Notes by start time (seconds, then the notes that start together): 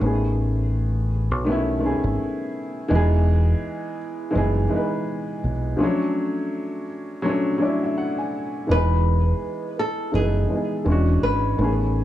Already playing: G#4
0.00 A1 D#3 A3 B3 C#4
0.06 G#4
1.31 B1
1.44 D#3 A3 B3
1.50 C#4 E4
1.79 D#3 A3 B3
1.84 C#4 G#4
2.04 G#1
2.88 E1 E3 G#3 B3
2.94 D#4 G#4
4.31 E3 G#3 B3
4.35 F#1 D#4 G#4
4.69 E3 G#3 B3
4.74 D#4 B4
5.44 B1
5.77 F3 A3 C#4
5.82 F#3 D4 A4
7.22 F#3 A3 C#4
7.27 D4 A4
7.58 F#3 A3 C#4 D5
7.63 D4 E4
7.83 E5
7.98 F#5
8.18 G#5
8.67 E1 E3 G#3 B3
8.71 D#4 G#4 B4
9.79 A4
10.12 F#1 E3 G#3 B3 G#4
10.17 D#4 B4
10.48 E3 G#3 B3
10.54 D#4 G#4
10.84 E1 E3 G#3 C#4
10.90 D4 F#4
11.23 G#1 B4
11.57 A1 D#3 A3 B3
11.62 C#4 G#4